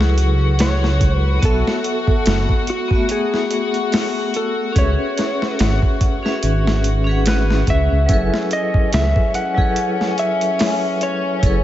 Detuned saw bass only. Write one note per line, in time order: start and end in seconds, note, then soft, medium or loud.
0.00 1.39 C#2 medium
1.43 1.63 B1 loud
2.27 2.47 F#1 loud
4.76 4.97 C#2 loud
5.60 5.80 G#1 loud
6.43 7.26 G#1 medium
7.27 7.64 G#1 loud
7.68 7.88 C#2 medium
7.92 8.08 C#2 medium
8.10 8.30 F#1 medium
8.94 9.14 C#2 loud
11.43 11.63 F#1 loud